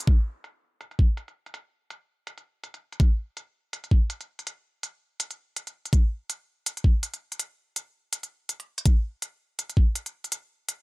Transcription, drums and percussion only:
0, 0, Header, 1, 2, 480
1, 0, Start_track
1, 0, Tempo, 365854
1, 98, Time_signature, 4, 2, 24, 8
1, 14200, End_track
2, 0, Start_track
2, 0, Title_t, "Drums"
2, 97, Note_on_c, 9, 36, 102
2, 98, Note_on_c, 9, 42, 70
2, 229, Note_off_c, 9, 36, 0
2, 229, Note_off_c, 9, 42, 0
2, 579, Note_on_c, 9, 42, 59
2, 710, Note_off_c, 9, 42, 0
2, 1059, Note_on_c, 9, 42, 74
2, 1190, Note_off_c, 9, 42, 0
2, 1197, Note_on_c, 9, 42, 32
2, 1298, Note_on_c, 9, 36, 54
2, 1328, Note_off_c, 9, 42, 0
2, 1430, Note_off_c, 9, 36, 0
2, 1539, Note_on_c, 9, 42, 59
2, 1670, Note_off_c, 9, 42, 0
2, 1680, Note_on_c, 9, 42, 34
2, 1811, Note_off_c, 9, 42, 0
2, 1920, Note_on_c, 9, 42, 36
2, 2020, Note_off_c, 9, 42, 0
2, 2020, Note_on_c, 9, 42, 76
2, 2151, Note_off_c, 9, 42, 0
2, 2499, Note_on_c, 9, 42, 59
2, 2630, Note_off_c, 9, 42, 0
2, 2978, Note_on_c, 9, 42, 74
2, 3109, Note_off_c, 9, 42, 0
2, 3117, Note_on_c, 9, 42, 33
2, 3249, Note_off_c, 9, 42, 0
2, 3458, Note_on_c, 9, 42, 60
2, 3590, Note_off_c, 9, 42, 0
2, 3596, Note_on_c, 9, 42, 35
2, 3727, Note_off_c, 9, 42, 0
2, 3838, Note_on_c, 9, 42, 33
2, 3935, Note_on_c, 9, 36, 109
2, 3939, Note_off_c, 9, 42, 0
2, 3939, Note_on_c, 9, 42, 72
2, 4066, Note_off_c, 9, 36, 0
2, 4070, Note_off_c, 9, 42, 0
2, 4419, Note_on_c, 9, 42, 62
2, 4551, Note_off_c, 9, 42, 0
2, 4896, Note_on_c, 9, 42, 76
2, 5027, Note_off_c, 9, 42, 0
2, 5036, Note_on_c, 9, 42, 32
2, 5135, Note_on_c, 9, 36, 60
2, 5167, Note_off_c, 9, 42, 0
2, 5266, Note_off_c, 9, 36, 0
2, 5378, Note_on_c, 9, 42, 57
2, 5509, Note_off_c, 9, 42, 0
2, 5519, Note_on_c, 9, 42, 34
2, 5650, Note_off_c, 9, 42, 0
2, 5760, Note_on_c, 9, 42, 33
2, 5862, Note_off_c, 9, 42, 0
2, 5862, Note_on_c, 9, 42, 68
2, 5993, Note_off_c, 9, 42, 0
2, 6341, Note_on_c, 9, 42, 56
2, 6472, Note_off_c, 9, 42, 0
2, 6821, Note_on_c, 9, 42, 72
2, 6952, Note_off_c, 9, 42, 0
2, 6961, Note_on_c, 9, 42, 31
2, 7092, Note_off_c, 9, 42, 0
2, 7301, Note_on_c, 9, 42, 59
2, 7432, Note_off_c, 9, 42, 0
2, 7440, Note_on_c, 9, 42, 33
2, 7571, Note_off_c, 9, 42, 0
2, 7681, Note_on_c, 9, 42, 32
2, 7778, Note_on_c, 9, 36, 102
2, 7782, Note_off_c, 9, 42, 0
2, 7782, Note_on_c, 9, 42, 67
2, 7909, Note_off_c, 9, 36, 0
2, 7914, Note_off_c, 9, 42, 0
2, 8261, Note_on_c, 9, 42, 59
2, 8392, Note_off_c, 9, 42, 0
2, 8743, Note_on_c, 9, 42, 68
2, 8874, Note_off_c, 9, 42, 0
2, 8884, Note_on_c, 9, 42, 31
2, 8978, Note_on_c, 9, 36, 55
2, 9015, Note_off_c, 9, 42, 0
2, 9109, Note_off_c, 9, 36, 0
2, 9223, Note_on_c, 9, 42, 53
2, 9355, Note_off_c, 9, 42, 0
2, 9363, Note_on_c, 9, 42, 32
2, 9494, Note_off_c, 9, 42, 0
2, 9602, Note_on_c, 9, 42, 33
2, 9702, Note_off_c, 9, 42, 0
2, 9702, Note_on_c, 9, 42, 65
2, 9833, Note_off_c, 9, 42, 0
2, 10183, Note_on_c, 9, 42, 60
2, 10315, Note_off_c, 9, 42, 0
2, 10662, Note_on_c, 9, 42, 66
2, 10793, Note_off_c, 9, 42, 0
2, 10802, Note_on_c, 9, 42, 29
2, 10933, Note_off_c, 9, 42, 0
2, 11140, Note_on_c, 9, 42, 56
2, 11272, Note_off_c, 9, 42, 0
2, 11281, Note_on_c, 9, 42, 31
2, 11412, Note_off_c, 9, 42, 0
2, 11519, Note_on_c, 9, 42, 33
2, 11618, Note_off_c, 9, 42, 0
2, 11618, Note_on_c, 9, 42, 65
2, 11619, Note_on_c, 9, 36, 104
2, 11749, Note_off_c, 9, 42, 0
2, 11750, Note_off_c, 9, 36, 0
2, 12099, Note_on_c, 9, 42, 60
2, 12230, Note_off_c, 9, 42, 0
2, 12580, Note_on_c, 9, 42, 73
2, 12711, Note_off_c, 9, 42, 0
2, 12720, Note_on_c, 9, 42, 32
2, 12817, Note_on_c, 9, 36, 55
2, 12851, Note_off_c, 9, 42, 0
2, 12948, Note_off_c, 9, 36, 0
2, 13061, Note_on_c, 9, 42, 57
2, 13192, Note_off_c, 9, 42, 0
2, 13200, Note_on_c, 9, 42, 32
2, 13331, Note_off_c, 9, 42, 0
2, 13439, Note_on_c, 9, 42, 34
2, 13539, Note_off_c, 9, 42, 0
2, 13539, Note_on_c, 9, 42, 73
2, 13670, Note_off_c, 9, 42, 0
2, 14019, Note_on_c, 9, 42, 62
2, 14150, Note_off_c, 9, 42, 0
2, 14200, End_track
0, 0, End_of_file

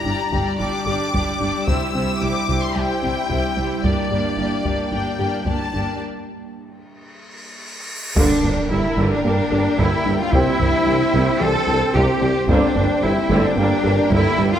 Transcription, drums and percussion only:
0, 0, Header, 1, 2, 480
1, 0, Start_track
1, 0, Tempo, 540541
1, 1490, Time_signature, 4, 2, 24, 8
1, 12959, End_track
2, 0, Start_track
2, 0, Title_t, "Taiko and cinematic ensemble drums"
2, 287, Note_on_c, 9, 41, 66
2, 376, Note_off_c, 9, 41, 0
2, 1009, Note_on_c, 9, 41, 73
2, 1098, Note_off_c, 9, 41, 0
2, 1488, Note_on_c, 9, 41, 92
2, 1577, Note_off_c, 9, 41, 0
2, 2209, Note_on_c, 9, 41, 66
2, 2298, Note_off_c, 9, 41, 0
2, 2927, Note_on_c, 9, 41, 77
2, 3016, Note_off_c, 9, 41, 0
2, 3411, Note_on_c, 9, 41, 85
2, 3500, Note_off_c, 9, 41, 0
2, 4131, Note_on_c, 9, 41, 66
2, 4220, Note_off_c, 9, 41, 0
2, 4849, Note_on_c, 9, 41, 73
2, 4938, Note_off_c, 9, 41, 0
2, 7250, Note_on_c, 9, 41, 97
2, 7339, Note_off_c, 9, 41, 0
2, 7489, Note_on_c, 9, 43, 50
2, 7578, Note_off_c, 9, 43, 0
2, 8691, Note_on_c, 9, 41, 74
2, 8779, Note_off_c, 9, 41, 0
2, 9171, Note_on_c, 9, 41, 99
2, 9260, Note_off_c, 9, 41, 0
2, 9411, Note_on_c, 9, 43, 49
2, 9500, Note_off_c, 9, 43, 0
2, 10611, Note_on_c, 9, 41, 82
2, 10700, Note_off_c, 9, 41, 0
2, 11092, Note_on_c, 9, 41, 106
2, 11181, Note_off_c, 9, 41, 0
2, 11334, Note_on_c, 9, 43, 54
2, 11423, Note_off_c, 9, 43, 0
2, 12527, Note_on_c, 9, 41, 85
2, 12616, Note_off_c, 9, 41, 0
2, 12959, End_track
0, 0, End_of_file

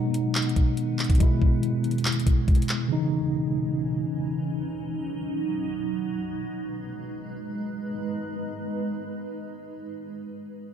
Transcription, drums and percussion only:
0, 0, Header, 1, 2, 480
1, 0, Start_track
1, 0, Key_signature, 5, "minor"
1, 0, Tempo, 500000
1, 10308, End_track
2, 0, Start_track
2, 0, Title_t, "Drums"
2, 137, Note_on_c, 9, 42, 85
2, 233, Note_off_c, 9, 42, 0
2, 337, Note_on_c, 9, 39, 122
2, 338, Note_on_c, 9, 42, 38
2, 406, Note_off_c, 9, 42, 0
2, 406, Note_on_c, 9, 42, 50
2, 433, Note_off_c, 9, 39, 0
2, 474, Note_off_c, 9, 42, 0
2, 474, Note_on_c, 9, 42, 63
2, 541, Note_off_c, 9, 42, 0
2, 541, Note_on_c, 9, 42, 87
2, 542, Note_on_c, 9, 36, 90
2, 637, Note_off_c, 9, 42, 0
2, 638, Note_off_c, 9, 36, 0
2, 742, Note_on_c, 9, 42, 76
2, 838, Note_off_c, 9, 42, 0
2, 951, Note_on_c, 9, 39, 89
2, 951, Note_on_c, 9, 42, 44
2, 1001, Note_off_c, 9, 42, 0
2, 1001, Note_on_c, 9, 42, 54
2, 1047, Note_off_c, 9, 39, 0
2, 1052, Note_on_c, 9, 36, 91
2, 1053, Note_off_c, 9, 42, 0
2, 1053, Note_on_c, 9, 42, 65
2, 1104, Note_off_c, 9, 42, 0
2, 1104, Note_on_c, 9, 42, 73
2, 1148, Note_off_c, 9, 36, 0
2, 1155, Note_off_c, 9, 42, 0
2, 1155, Note_on_c, 9, 36, 121
2, 1155, Note_on_c, 9, 42, 85
2, 1251, Note_off_c, 9, 36, 0
2, 1251, Note_off_c, 9, 42, 0
2, 1359, Note_on_c, 9, 36, 96
2, 1455, Note_off_c, 9, 36, 0
2, 1565, Note_on_c, 9, 42, 67
2, 1661, Note_off_c, 9, 42, 0
2, 1767, Note_on_c, 9, 42, 49
2, 1835, Note_off_c, 9, 42, 0
2, 1835, Note_on_c, 9, 42, 54
2, 1903, Note_off_c, 9, 42, 0
2, 1903, Note_on_c, 9, 42, 57
2, 1971, Note_off_c, 9, 42, 0
2, 1971, Note_on_c, 9, 39, 119
2, 1971, Note_on_c, 9, 42, 66
2, 2039, Note_off_c, 9, 42, 0
2, 2039, Note_on_c, 9, 42, 72
2, 2067, Note_off_c, 9, 39, 0
2, 2108, Note_off_c, 9, 42, 0
2, 2108, Note_on_c, 9, 42, 79
2, 2176, Note_off_c, 9, 42, 0
2, 2176, Note_on_c, 9, 36, 93
2, 2176, Note_on_c, 9, 42, 96
2, 2272, Note_off_c, 9, 36, 0
2, 2272, Note_off_c, 9, 42, 0
2, 2380, Note_on_c, 9, 36, 96
2, 2380, Note_on_c, 9, 42, 49
2, 2448, Note_off_c, 9, 42, 0
2, 2448, Note_on_c, 9, 42, 64
2, 2476, Note_off_c, 9, 36, 0
2, 2516, Note_off_c, 9, 42, 0
2, 2516, Note_on_c, 9, 42, 81
2, 2580, Note_off_c, 9, 42, 0
2, 2580, Note_on_c, 9, 42, 71
2, 2584, Note_on_c, 9, 39, 86
2, 2676, Note_off_c, 9, 42, 0
2, 2680, Note_off_c, 9, 39, 0
2, 10308, End_track
0, 0, End_of_file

